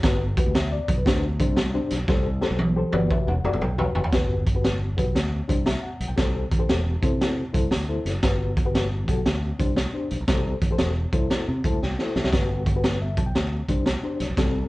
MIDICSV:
0, 0, Header, 1, 4, 480
1, 0, Start_track
1, 0, Key_signature, 1, "major"
1, 0, Tempo, 512383
1, 32, Time_signature, 4, 2, 24, 8
1, 13754, End_track
2, 0, Start_track
2, 0, Title_t, "Reed electric piano"
2, 0, Program_c, 0, 4
2, 40, Note_on_c, 0, 66, 84
2, 41, Note_on_c, 0, 67, 77
2, 54, Note_on_c, 0, 71, 94
2, 216, Note_off_c, 0, 66, 0
2, 216, Note_off_c, 0, 67, 0
2, 222, Note_off_c, 0, 71, 0
2, 354, Note_on_c, 0, 66, 80
2, 361, Note_on_c, 0, 67, 74
2, 368, Note_on_c, 0, 71, 83
2, 492, Note_off_c, 0, 66, 0
2, 495, Note_off_c, 0, 67, 0
2, 499, Note_off_c, 0, 71, 0
2, 523, Note_on_c, 0, 76, 61
2, 667, Note_off_c, 0, 76, 0
2, 675, Note_on_c, 0, 74, 77
2, 900, Note_off_c, 0, 74, 0
2, 915, Note_on_c, 0, 71, 64
2, 991, Note_on_c, 0, 62, 71
2, 992, Note_on_c, 0, 67, 73
2, 1000, Note_on_c, 0, 72, 86
2, 1140, Note_off_c, 0, 71, 0
2, 1171, Note_off_c, 0, 62, 0
2, 1171, Note_off_c, 0, 67, 0
2, 1175, Note_off_c, 0, 72, 0
2, 1310, Note_on_c, 0, 62, 76
2, 1315, Note_on_c, 0, 67, 74
2, 1321, Note_on_c, 0, 72, 89
2, 1449, Note_off_c, 0, 62, 0
2, 1452, Note_off_c, 0, 67, 0
2, 1455, Note_off_c, 0, 72, 0
2, 1630, Note_on_c, 0, 62, 87
2, 1634, Note_on_c, 0, 67, 72
2, 1638, Note_on_c, 0, 72, 87
2, 1845, Note_off_c, 0, 62, 0
2, 1847, Note_off_c, 0, 67, 0
2, 1849, Note_off_c, 0, 72, 0
2, 1953, Note_on_c, 0, 67, 83
2, 1956, Note_on_c, 0, 69, 81
2, 1962, Note_on_c, 0, 72, 92
2, 2131, Note_off_c, 0, 67, 0
2, 2133, Note_off_c, 0, 69, 0
2, 2136, Note_off_c, 0, 72, 0
2, 2261, Note_on_c, 0, 67, 84
2, 2265, Note_on_c, 0, 69, 71
2, 2271, Note_on_c, 0, 72, 89
2, 2404, Note_off_c, 0, 67, 0
2, 2406, Note_off_c, 0, 69, 0
2, 2409, Note_off_c, 0, 72, 0
2, 2589, Note_on_c, 0, 67, 83
2, 2596, Note_on_c, 0, 69, 74
2, 2598, Note_on_c, 0, 72, 96
2, 2742, Note_off_c, 0, 67, 0
2, 2748, Note_on_c, 0, 66, 88
2, 2749, Note_off_c, 0, 69, 0
2, 2750, Note_off_c, 0, 72, 0
2, 2752, Note_on_c, 0, 74, 69
2, 2753, Note_on_c, 0, 67, 79
2, 2758, Note_on_c, 0, 71, 93
2, 2902, Note_off_c, 0, 74, 0
2, 2918, Note_on_c, 0, 76, 66
2, 3061, Note_off_c, 0, 76, 0
2, 3077, Note_on_c, 0, 78, 68
2, 3100, Note_off_c, 0, 66, 0
2, 3103, Note_off_c, 0, 67, 0
2, 3105, Note_off_c, 0, 71, 0
2, 3231, Note_on_c, 0, 66, 76
2, 3233, Note_on_c, 0, 67, 78
2, 3239, Note_on_c, 0, 74, 91
2, 3369, Note_off_c, 0, 66, 0
2, 3370, Note_off_c, 0, 67, 0
2, 3372, Note_off_c, 0, 78, 0
2, 3373, Note_off_c, 0, 74, 0
2, 3392, Note_on_c, 0, 79, 72
2, 3537, Note_off_c, 0, 79, 0
2, 3542, Note_on_c, 0, 66, 77
2, 3548, Note_on_c, 0, 83, 67
2, 3549, Note_on_c, 0, 67, 70
2, 3553, Note_on_c, 0, 71, 82
2, 3761, Note_off_c, 0, 66, 0
2, 3764, Note_off_c, 0, 67, 0
2, 3766, Note_off_c, 0, 71, 0
2, 3848, Note_off_c, 0, 83, 0
2, 3877, Note_on_c, 0, 66, 74
2, 3879, Note_on_c, 0, 67, 78
2, 3886, Note_on_c, 0, 71, 96
2, 4143, Note_off_c, 0, 66, 0
2, 4144, Note_off_c, 0, 67, 0
2, 4147, Note_off_c, 0, 71, 0
2, 4261, Note_on_c, 0, 66, 76
2, 4267, Note_on_c, 0, 67, 70
2, 4273, Note_on_c, 0, 71, 92
2, 4459, Note_off_c, 0, 66, 0
2, 4461, Note_off_c, 0, 67, 0
2, 4465, Note_off_c, 0, 71, 0
2, 4656, Note_on_c, 0, 66, 78
2, 4659, Note_on_c, 0, 67, 66
2, 4666, Note_on_c, 0, 71, 85
2, 4825, Note_off_c, 0, 66, 0
2, 4827, Note_off_c, 0, 67, 0
2, 4831, Note_off_c, 0, 71, 0
2, 5132, Note_on_c, 0, 62, 75
2, 5137, Note_on_c, 0, 67, 72
2, 5141, Note_on_c, 0, 72, 82
2, 5280, Note_off_c, 0, 62, 0
2, 5282, Note_off_c, 0, 67, 0
2, 5284, Note_off_c, 0, 72, 0
2, 5300, Note_on_c, 0, 76, 59
2, 5454, Note_off_c, 0, 76, 0
2, 5460, Note_on_c, 0, 78, 64
2, 5692, Note_off_c, 0, 78, 0
2, 5699, Note_on_c, 0, 79, 62
2, 5775, Note_on_c, 0, 67, 86
2, 5783, Note_on_c, 0, 69, 74
2, 5787, Note_on_c, 0, 72, 87
2, 5931, Note_off_c, 0, 79, 0
2, 6052, Note_off_c, 0, 67, 0
2, 6056, Note_off_c, 0, 69, 0
2, 6058, Note_off_c, 0, 72, 0
2, 6173, Note_on_c, 0, 67, 80
2, 6176, Note_on_c, 0, 69, 69
2, 6180, Note_on_c, 0, 72, 93
2, 6375, Note_off_c, 0, 67, 0
2, 6376, Note_off_c, 0, 69, 0
2, 6378, Note_off_c, 0, 72, 0
2, 6574, Note_on_c, 0, 64, 76
2, 6580, Note_on_c, 0, 69, 75
2, 6586, Note_on_c, 0, 72, 95
2, 6934, Note_off_c, 0, 64, 0
2, 6937, Note_off_c, 0, 69, 0
2, 6940, Note_off_c, 0, 72, 0
2, 7053, Note_on_c, 0, 64, 74
2, 7059, Note_on_c, 0, 72, 85
2, 7060, Note_on_c, 0, 69, 76
2, 7201, Note_off_c, 0, 64, 0
2, 7204, Note_off_c, 0, 69, 0
2, 7204, Note_off_c, 0, 72, 0
2, 7388, Note_on_c, 0, 64, 76
2, 7390, Note_on_c, 0, 69, 67
2, 7396, Note_on_c, 0, 72, 78
2, 7604, Note_off_c, 0, 64, 0
2, 7605, Note_off_c, 0, 69, 0
2, 7608, Note_off_c, 0, 72, 0
2, 7708, Note_on_c, 0, 66, 80
2, 7715, Note_on_c, 0, 67, 71
2, 7718, Note_on_c, 0, 71, 88
2, 7979, Note_off_c, 0, 66, 0
2, 7982, Note_off_c, 0, 67, 0
2, 7984, Note_off_c, 0, 71, 0
2, 8106, Note_on_c, 0, 66, 79
2, 8112, Note_on_c, 0, 67, 71
2, 8114, Note_on_c, 0, 71, 90
2, 8301, Note_off_c, 0, 66, 0
2, 8305, Note_off_c, 0, 67, 0
2, 8306, Note_off_c, 0, 71, 0
2, 8513, Note_on_c, 0, 66, 73
2, 8520, Note_on_c, 0, 67, 71
2, 8528, Note_on_c, 0, 69, 80
2, 8674, Note_off_c, 0, 66, 0
2, 8678, Note_off_c, 0, 67, 0
2, 8682, Note_off_c, 0, 69, 0
2, 8981, Note_on_c, 0, 62, 76
2, 8989, Note_on_c, 0, 67, 69
2, 8995, Note_on_c, 0, 72, 90
2, 9125, Note_off_c, 0, 62, 0
2, 9129, Note_off_c, 0, 67, 0
2, 9132, Note_off_c, 0, 72, 0
2, 9302, Note_on_c, 0, 62, 72
2, 9310, Note_on_c, 0, 67, 63
2, 9316, Note_on_c, 0, 72, 76
2, 9521, Note_off_c, 0, 62, 0
2, 9525, Note_off_c, 0, 67, 0
2, 9528, Note_off_c, 0, 72, 0
2, 9629, Note_on_c, 0, 67, 80
2, 9633, Note_on_c, 0, 69, 73
2, 9639, Note_on_c, 0, 72, 95
2, 9899, Note_off_c, 0, 67, 0
2, 9901, Note_off_c, 0, 69, 0
2, 9904, Note_off_c, 0, 72, 0
2, 10032, Note_on_c, 0, 67, 72
2, 10038, Note_on_c, 0, 69, 69
2, 10045, Note_on_c, 0, 72, 93
2, 10224, Note_off_c, 0, 67, 0
2, 10227, Note_off_c, 0, 69, 0
2, 10231, Note_off_c, 0, 72, 0
2, 10430, Note_on_c, 0, 64, 78
2, 10437, Note_on_c, 0, 69, 71
2, 10438, Note_on_c, 0, 72, 89
2, 10781, Note_off_c, 0, 64, 0
2, 10785, Note_off_c, 0, 69, 0
2, 10785, Note_off_c, 0, 72, 0
2, 10912, Note_on_c, 0, 64, 76
2, 10914, Note_on_c, 0, 81, 67
2, 10916, Note_on_c, 0, 69, 72
2, 10920, Note_on_c, 0, 72, 85
2, 11050, Note_off_c, 0, 64, 0
2, 11052, Note_off_c, 0, 69, 0
2, 11054, Note_off_c, 0, 72, 0
2, 11063, Note_off_c, 0, 81, 0
2, 11085, Note_on_c, 0, 79, 68
2, 11231, Note_on_c, 0, 64, 74
2, 11240, Note_on_c, 0, 69, 73
2, 11246, Note_on_c, 0, 72, 82
2, 11370, Note_off_c, 0, 79, 0
2, 11391, Note_on_c, 0, 76, 60
2, 11445, Note_off_c, 0, 64, 0
2, 11449, Note_off_c, 0, 69, 0
2, 11453, Note_off_c, 0, 72, 0
2, 11541, Note_off_c, 0, 76, 0
2, 11546, Note_on_c, 0, 66, 78
2, 11551, Note_on_c, 0, 67, 76
2, 11554, Note_on_c, 0, 71, 90
2, 11817, Note_off_c, 0, 66, 0
2, 11820, Note_off_c, 0, 67, 0
2, 11821, Note_off_c, 0, 71, 0
2, 11951, Note_on_c, 0, 66, 76
2, 11957, Note_on_c, 0, 67, 70
2, 11959, Note_on_c, 0, 71, 86
2, 12143, Note_off_c, 0, 66, 0
2, 12146, Note_off_c, 0, 67, 0
2, 12147, Note_off_c, 0, 71, 0
2, 12194, Note_on_c, 0, 76, 64
2, 12340, Note_off_c, 0, 76, 0
2, 12347, Note_on_c, 0, 81, 66
2, 12424, Note_off_c, 0, 81, 0
2, 12426, Note_on_c, 0, 79, 67
2, 12654, Note_off_c, 0, 79, 0
2, 12826, Note_on_c, 0, 62, 78
2, 12830, Note_on_c, 0, 67, 70
2, 12837, Note_on_c, 0, 72, 85
2, 12966, Note_off_c, 0, 62, 0
2, 12968, Note_off_c, 0, 67, 0
2, 12971, Note_off_c, 0, 72, 0
2, 13145, Note_on_c, 0, 62, 72
2, 13153, Note_on_c, 0, 67, 64
2, 13158, Note_on_c, 0, 72, 84
2, 13361, Note_off_c, 0, 62, 0
2, 13365, Note_off_c, 0, 67, 0
2, 13368, Note_off_c, 0, 72, 0
2, 13467, Note_on_c, 0, 60, 75
2, 13473, Note_on_c, 0, 67, 77
2, 13476, Note_on_c, 0, 69, 82
2, 13737, Note_off_c, 0, 60, 0
2, 13739, Note_off_c, 0, 67, 0
2, 13741, Note_off_c, 0, 69, 0
2, 13754, End_track
3, 0, Start_track
3, 0, Title_t, "Fingered electric bass"
3, 0, Program_c, 1, 33
3, 33, Note_on_c, 1, 31, 108
3, 334, Note_off_c, 1, 31, 0
3, 438, Note_on_c, 1, 38, 88
3, 735, Note_off_c, 1, 38, 0
3, 829, Note_on_c, 1, 35, 88
3, 953, Note_off_c, 1, 35, 0
3, 993, Note_on_c, 1, 38, 102
3, 1309, Note_on_c, 1, 36, 83
3, 1323, Note_off_c, 1, 38, 0
3, 1671, Note_off_c, 1, 36, 0
3, 1792, Note_on_c, 1, 35, 79
3, 1915, Note_off_c, 1, 35, 0
3, 1951, Note_on_c, 1, 36, 111
3, 2251, Note_off_c, 1, 36, 0
3, 2347, Note_on_c, 1, 35, 96
3, 2648, Note_off_c, 1, 35, 0
3, 2748, Note_on_c, 1, 31, 96
3, 2872, Note_off_c, 1, 31, 0
3, 3064, Note_on_c, 1, 28, 83
3, 3185, Note_off_c, 1, 28, 0
3, 3224, Note_on_c, 1, 30, 96
3, 3287, Note_off_c, 1, 30, 0
3, 3307, Note_on_c, 1, 31, 77
3, 3370, Note_off_c, 1, 31, 0
3, 3392, Note_on_c, 1, 35, 83
3, 3630, Note_off_c, 1, 35, 0
3, 3704, Note_on_c, 1, 30, 81
3, 3767, Note_off_c, 1, 30, 0
3, 3865, Note_on_c, 1, 31, 101
3, 4625, Note_off_c, 1, 31, 0
3, 4665, Note_on_c, 1, 35, 83
3, 4790, Note_off_c, 1, 35, 0
3, 4823, Note_on_c, 1, 38, 97
3, 5064, Note_off_c, 1, 38, 0
3, 5147, Note_on_c, 1, 36, 81
3, 5390, Note_off_c, 1, 36, 0
3, 5624, Note_on_c, 1, 35, 75
3, 5687, Note_off_c, 1, 35, 0
3, 5701, Note_on_c, 1, 35, 81
3, 5766, Note_off_c, 1, 35, 0
3, 5789, Note_on_c, 1, 36, 98
3, 6028, Note_off_c, 1, 36, 0
3, 6104, Note_on_c, 1, 33, 85
3, 6229, Note_off_c, 1, 33, 0
3, 6276, Note_on_c, 1, 28, 91
3, 6512, Note_off_c, 1, 28, 0
3, 6581, Note_on_c, 1, 48, 89
3, 6946, Note_off_c, 1, 48, 0
3, 7066, Note_on_c, 1, 36, 88
3, 7191, Note_off_c, 1, 36, 0
3, 7232, Note_on_c, 1, 38, 77
3, 7470, Note_off_c, 1, 38, 0
3, 7543, Note_on_c, 1, 30, 83
3, 7669, Note_off_c, 1, 30, 0
3, 7714, Note_on_c, 1, 31, 102
3, 8506, Note_off_c, 1, 31, 0
3, 8506, Note_on_c, 1, 35, 82
3, 8631, Note_off_c, 1, 35, 0
3, 8678, Note_on_c, 1, 38, 98
3, 8914, Note_off_c, 1, 38, 0
3, 8990, Note_on_c, 1, 36, 80
3, 9232, Note_off_c, 1, 36, 0
3, 9474, Note_on_c, 1, 35, 81
3, 9533, Note_off_c, 1, 35, 0
3, 9559, Note_on_c, 1, 35, 85
3, 9617, Note_off_c, 1, 35, 0
3, 9630, Note_on_c, 1, 36, 113
3, 9869, Note_off_c, 1, 36, 0
3, 9944, Note_on_c, 1, 33, 81
3, 10069, Note_off_c, 1, 33, 0
3, 10109, Note_on_c, 1, 28, 87
3, 10348, Note_off_c, 1, 28, 0
3, 10424, Note_on_c, 1, 36, 91
3, 10550, Note_off_c, 1, 36, 0
3, 10758, Note_on_c, 1, 48, 80
3, 10873, Note_off_c, 1, 48, 0
3, 10908, Note_on_c, 1, 36, 84
3, 10969, Note_off_c, 1, 36, 0
3, 10989, Note_on_c, 1, 38, 81
3, 11051, Note_off_c, 1, 38, 0
3, 11074, Note_on_c, 1, 36, 75
3, 11191, Note_off_c, 1, 36, 0
3, 11388, Note_on_c, 1, 35, 73
3, 11449, Note_off_c, 1, 35, 0
3, 11471, Note_on_c, 1, 36, 85
3, 11549, Note_on_c, 1, 31, 108
3, 11563, Note_off_c, 1, 36, 0
3, 12306, Note_off_c, 1, 31, 0
3, 12341, Note_on_c, 1, 35, 83
3, 12467, Note_off_c, 1, 35, 0
3, 12506, Note_on_c, 1, 38, 97
3, 12745, Note_off_c, 1, 38, 0
3, 12823, Note_on_c, 1, 36, 83
3, 13067, Note_off_c, 1, 36, 0
3, 13303, Note_on_c, 1, 35, 82
3, 13365, Note_off_c, 1, 35, 0
3, 13392, Note_on_c, 1, 35, 81
3, 13452, Note_off_c, 1, 35, 0
3, 13465, Note_on_c, 1, 36, 99
3, 13704, Note_off_c, 1, 36, 0
3, 13754, End_track
4, 0, Start_track
4, 0, Title_t, "Drums"
4, 31, Note_on_c, 9, 36, 107
4, 31, Note_on_c, 9, 42, 96
4, 32, Note_on_c, 9, 38, 97
4, 124, Note_off_c, 9, 36, 0
4, 125, Note_off_c, 9, 42, 0
4, 126, Note_off_c, 9, 38, 0
4, 348, Note_on_c, 9, 36, 106
4, 349, Note_on_c, 9, 42, 79
4, 442, Note_off_c, 9, 36, 0
4, 443, Note_off_c, 9, 42, 0
4, 514, Note_on_c, 9, 38, 111
4, 515, Note_on_c, 9, 42, 86
4, 608, Note_off_c, 9, 38, 0
4, 608, Note_off_c, 9, 42, 0
4, 828, Note_on_c, 9, 36, 98
4, 831, Note_on_c, 9, 42, 77
4, 922, Note_off_c, 9, 36, 0
4, 924, Note_off_c, 9, 42, 0
4, 993, Note_on_c, 9, 36, 84
4, 1001, Note_on_c, 9, 38, 105
4, 1003, Note_on_c, 9, 42, 88
4, 1087, Note_off_c, 9, 36, 0
4, 1094, Note_off_c, 9, 38, 0
4, 1096, Note_off_c, 9, 42, 0
4, 1309, Note_on_c, 9, 36, 94
4, 1310, Note_on_c, 9, 42, 75
4, 1402, Note_off_c, 9, 36, 0
4, 1404, Note_off_c, 9, 42, 0
4, 1466, Note_on_c, 9, 38, 102
4, 1478, Note_on_c, 9, 42, 83
4, 1560, Note_off_c, 9, 38, 0
4, 1571, Note_off_c, 9, 42, 0
4, 1783, Note_on_c, 9, 38, 35
4, 1784, Note_on_c, 9, 42, 91
4, 1877, Note_off_c, 9, 38, 0
4, 1878, Note_off_c, 9, 42, 0
4, 1949, Note_on_c, 9, 36, 107
4, 1949, Note_on_c, 9, 38, 54
4, 2042, Note_off_c, 9, 38, 0
4, 2043, Note_off_c, 9, 36, 0
4, 2262, Note_on_c, 9, 38, 66
4, 2356, Note_off_c, 9, 38, 0
4, 2423, Note_on_c, 9, 48, 71
4, 2517, Note_off_c, 9, 48, 0
4, 2740, Note_on_c, 9, 48, 81
4, 2834, Note_off_c, 9, 48, 0
4, 2909, Note_on_c, 9, 36, 85
4, 2915, Note_on_c, 9, 47, 80
4, 3003, Note_off_c, 9, 36, 0
4, 3008, Note_off_c, 9, 47, 0
4, 3072, Note_on_c, 9, 47, 73
4, 3166, Note_off_c, 9, 47, 0
4, 3228, Note_on_c, 9, 45, 88
4, 3310, Note_off_c, 9, 45, 0
4, 3310, Note_on_c, 9, 45, 83
4, 3387, Note_off_c, 9, 45, 0
4, 3387, Note_on_c, 9, 45, 95
4, 3481, Note_off_c, 9, 45, 0
4, 3545, Note_on_c, 9, 43, 88
4, 3639, Note_off_c, 9, 43, 0
4, 3700, Note_on_c, 9, 43, 94
4, 3784, Note_off_c, 9, 43, 0
4, 3784, Note_on_c, 9, 43, 89
4, 3862, Note_on_c, 9, 42, 85
4, 3863, Note_on_c, 9, 38, 96
4, 3865, Note_on_c, 9, 36, 97
4, 3877, Note_off_c, 9, 43, 0
4, 3955, Note_off_c, 9, 42, 0
4, 3957, Note_off_c, 9, 38, 0
4, 3959, Note_off_c, 9, 36, 0
4, 4183, Note_on_c, 9, 36, 91
4, 4184, Note_on_c, 9, 42, 77
4, 4277, Note_off_c, 9, 36, 0
4, 4278, Note_off_c, 9, 42, 0
4, 4349, Note_on_c, 9, 38, 101
4, 4350, Note_on_c, 9, 42, 82
4, 4443, Note_off_c, 9, 38, 0
4, 4444, Note_off_c, 9, 42, 0
4, 4665, Note_on_c, 9, 36, 91
4, 4672, Note_on_c, 9, 42, 71
4, 4758, Note_off_c, 9, 36, 0
4, 4765, Note_off_c, 9, 42, 0
4, 4829, Note_on_c, 9, 38, 92
4, 4831, Note_on_c, 9, 42, 80
4, 4923, Note_off_c, 9, 38, 0
4, 4925, Note_off_c, 9, 42, 0
4, 5146, Note_on_c, 9, 36, 89
4, 5151, Note_on_c, 9, 42, 77
4, 5239, Note_off_c, 9, 36, 0
4, 5245, Note_off_c, 9, 42, 0
4, 5302, Note_on_c, 9, 38, 105
4, 5314, Note_on_c, 9, 42, 87
4, 5396, Note_off_c, 9, 38, 0
4, 5407, Note_off_c, 9, 42, 0
4, 5625, Note_on_c, 9, 42, 82
4, 5719, Note_off_c, 9, 42, 0
4, 5783, Note_on_c, 9, 42, 80
4, 5785, Note_on_c, 9, 38, 95
4, 5787, Note_on_c, 9, 36, 97
4, 5877, Note_off_c, 9, 42, 0
4, 5878, Note_off_c, 9, 38, 0
4, 5880, Note_off_c, 9, 36, 0
4, 6102, Note_on_c, 9, 42, 79
4, 6103, Note_on_c, 9, 36, 93
4, 6196, Note_off_c, 9, 42, 0
4, 6197, Note_off_c, 9, 36, 0
4, 6269, Note_on_c, 9, 38, 113
4, 6270, Note_on_c, 9, 42, 81
4, 6363, Note_off_c, 9, 38, 0
4, 6363, Note_off_c, 9, 42, 0
4, 6582, Note_on_c, 9, 36, 99
4, 6585, Note_on_c, 9, 42, 71
4, 6676, Note_off_c, 9, 36, 0
4, 6679, Note_off_c, 9, 42, 0
4, 6755, Note_on_c, 9, 38, 102
4, 6758, Note_on_c, 9, 42, 84
4, 6849, Note_off_c, 9, 38, 0
4, 6851, Note_off_c, 9, 42, 0
4, 7067, Note_on_c, 9, 36, 90
4, 7071, Note_on_c, 9, 42, 68
4, 7160, Note_off_c, 9, 36, 0
4, 7165, Note_off_c, 9, 42, 0
4, 7223, Note_on_c, 9, 38, 94
4, 7234, Note_on_c, 9, 42, 82
4, 7317, Note_off_c, 9, 38, 0
4, 7328, Note_off_c, 9, 42, 0
4, 7547, Note_on_c, 9, 38, 31
4, 7548, Note_on_c, 9, 42, 74
4, 7641, Note_off_c, 9, 38, 0
4, 7642, Note_off_c, 9, 42, 0
4, 7705, Note_on_c, 9, 42, 91
4, 7707, Note_on_c, 9, 38, 91
4, 7709, Note_on_c, 9, 36, 97
4, 7799, Note_off_c, 9, 42, 0
4, 7800, Note_off_c, 9, 38, 0
4, 7803, Note_off_c, 9, 36, 0
4, 8027, Note_on_c, 9, 36, 98
4, 8028, Note_on_c, 9, 42, 74
4, 8121, Note_off_c, 9, 36, 0
4, 8122, Note_off_c, 9, 42, 0
4, 8195, Note_on_c, 9, 38, 103
4, 8196, Note_on_c, 9, 42, 89
4, 8289, Note_off_c, 9, 38, 0
4, 8289, Note_off_c, 9, 42, 0
4, 8506, Note_on_c, 9, 36, 86
4, 8511, Note_on_c, 9, 42, 68
4, 8599, Note_off_c, 9, 36, 0
4, 8604, Note_off_c, 9, 42, 0
4, 8671, Note_on_c, 9, 38, 102
4, 8673, Note_on_c, 9, 42, 76
4, 8765, Note_off_c, 9, 38, 0
4, 8767, Note_off_c, 9, 42, 0
4, 8988, Note_on_c, 9, 36, 88
4, 8991, Note_on_c, 9, 42, 69
4, 9082, Note_off_c, 9, 36, 0
4, 9085, Note_off_c, 9, 42, 0
4, 9147, Note_on_c, 9, 38, 98
4, 9158, Note_on_c, 9, 42, 83
4, 9241, Note_off_c, 9, 38, 0
4, 9252, Note_off_c, 9, 42, 0
4, 9467, Note_on_c, 9, 42, 74
4, 9560, Note_off_c, 9, 42, 0
4, 9626, Note_on_c, 9, 42, 93
4, 9627, Note_on_c, 9, 38, 99
4, 9629, Note_on_c, 9, 36, 108
4, 9720, Note_off_c, 9, 42, 0
4, 9721, Note_off_c, 9, 38, 0
4, 9723, Note_off_c, 9, 36, 0
4, 9943, Note_on_c, 9, 42, 77
4, 9945, Note_on_c, 9, 36, 86
4, 10036, Note_off_c, 9, 42, 0
4, 10039, Note_off_c, 9, 36, 0
4, 10101, Note_on_c, 9, 38, 114
4, 10102, Note_on_c, 9, 42, 86
4, 10195, Note_off_c, 9, 38, 0
4, 10196, Note_off_c, 9, 42, 0
4, 10422, Note_on_c, 9, 42, 76
4, 10424, Note_on_c, 9, 36, 101
4, 10515, Note_off_c, 9, 42, 0
4, 10518, Note_off_c, 9, 36, 0
4, 10589, Note_on_c, 9, 38, 94
4, 10591, Note_on_c, 9, 42, 82
4, 10683, Note_off_c, 9, 38, 0
4, 10685, Note_off_c, 9, 42, 0
4, 10907, Note_on_c, 9, 36, 89
4, 10913, Note_on_c, 9, 42, 71
4, 11000, Note_off_c, 9, 36, 0
4, 11007, Note_off_c, 9, 42, 0
4, 11077, Note_on_c, 9, 38, 52
4, 11170, Note_off_c, 9, 38, 0
4, 11230, Note_on_c, 9, 38, 57
4, 11323, Note_off_c, 9, 38, 0
4, 11389, Note_on_c, 9, 38, 75
4, 11466, Note_off_c, 9, 38, 0
4, 11466, Note_on_c, 9, 38, 84
4, 11547, Note_on_c, 9, 36, 102
4, 11550, Note_on_c, 9, 42, 88
4, 11552, Note_off_c, 9, 38, 0
4, 11552, Note_on_c, 9, 38, 101
4, 11641, Note_off_c, 9, 36, 0
4, 11644, Note_off_c, 9, 42, 0
4, 11646, Note_off_c, 9, 38, 0
4, 11862, Note_on_c, 9, 36, 94
4, 11862, Note_on_c, 9, 42, 73
4, 11956, Note_off_c, 9, 36, 0
4, 11956, Note_off_c, 9, 42, 0
4, 12026, Note_on_c, 9, 38, 119
4, 12027, Note_on_c, 9, 42, 83
4, 12120, Note_off_c, 9, 38, 0
4, 12121, Note_off_c, 9, 42, 0
4, 12338, Note_on_c, 9, 42, 66
4, 12339, Note_on_c, 9, 36, 94
4, 12432, Note_off_c, 9, 42, 0
4, 12433, Note_off_c, 9, 36, 0
4, 12508, Note_on_c, 9, 38, 98
4, 12510, Note_on_c, 9, 42, 82
4, 12602, Note_off_c, 9, 38, 0
4, 12604, Note_off_c, 9, 42, 0
4, 12820, Note_on_c, 9, 36, 83
4, 12821, Note_on_c, 9, 42, 72
4, 12914, Note_off_c, 9, 36, 0
4, 12915, Note_off_c, 9, 42, 0
4, 12982, Note_on_c, 9, 38, 97
4, 12993, Note_on_c, 9, 42, 88
4, 13076, Note_off_c, 9, 38, 0
4, 13087, Note_off_c, 9, 42, 0
4, 13302, Note_on_c, 9, 38, 35
4, 13302, Note_on_c, 9, 42, 79
4, 13395, Note_off_c, 9, 38, 0
4, 13396, Note_off_c, 9, 42, 0
4, 13464, Note_on_c, 9, 36, 108
4, 13466, Note_on_c, 9, 42, 83
4, 13467, Note_on_c, 9, 38, 93
4, 13558, Note_off_c, 9, 36, 0
4, 13559, Note_off_c, 9, 42, 0
4, 13561, Note_off_c, 9, 38, 0
4, 13754, End_track
0, 0, End_of_file